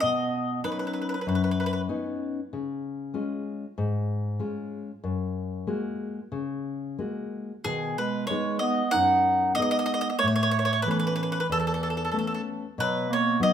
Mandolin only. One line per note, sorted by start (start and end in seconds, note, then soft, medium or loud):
0.00 0.60 D#5 medium
0.64 0.70 B4 medium
0.72 0.78 B4 soft
0.79 0.86 B4 medium
0.87 0.92 B4 soft
0.93 1.00 B4 soft
1.02 1.08 B4 soft
1.09 1.13 B4 soft
1.14 1.20 B4 soft
1.21 1.27 B4 soft
1.28 1.34 B4 soft
1.35 1.43 B4 soft
1.44 1.50 B4 soft
1.51 1.59 B4 medium
1.60 1.65 B4 soft
1.66 1.72 B4 medium
1.73 1.81 B4 soft
7.64 7.96 G#4 medium
7.98 8.26 B4 medium
8.27 8.59 C#5 medium
8.59 8.89 D#5 medium
8.91 9.52 F#5 loud
9.55 9.61 D#5 loud
9.62 9.70 D#5 medium
9.71 9.78 D#5 medium
9.79 9.85 D#5 medium
9.86 9.93 D#5 medium
9.94 10.00 D#5 medium
10.01 10.08 D#5 medium
10.10 10.17 D#5 medium
10.19 10.26 C#5 loud
10.28 10.34 C#5 medium
10.36 10.42 C#5 medium
10.43 10.50 C#5 medium
10.51 10.58 C#5 medium
10.59 10.64 C#5 medium
10.65 10.72 C#5 medium
10.73 10.80 C#5 medium
10.82 10.90 B4 medium
10.91 10.98 B4 medium
10.99 11.06 B4 medium
11.07 11.14 B4 medium
11.16 11.22 B4 medium
11.23 11.30 B4 medium
11.32 11.38 B4 medium
11.40 11.46 B4 medium
11.52 11.58 A4 medium
11.60 11.66 A4 medium
11.67 11.73 A4 medium
11.74 11.81 A4 medium
11.83 11.89 A4 medium
11.90 11.96 A4 soft
11.97 12.03 A4 medium
12.05 12.10 A4 soft
12.12 12.18 A4 medium
12.19 12.25 A4 medium
12.27 12.33 A4 medium
12.34 12.41 A4 medium
12.80 13.12 B4 loud
13.13 13.40 C#5 medium
13.43 13.53 D#5 medium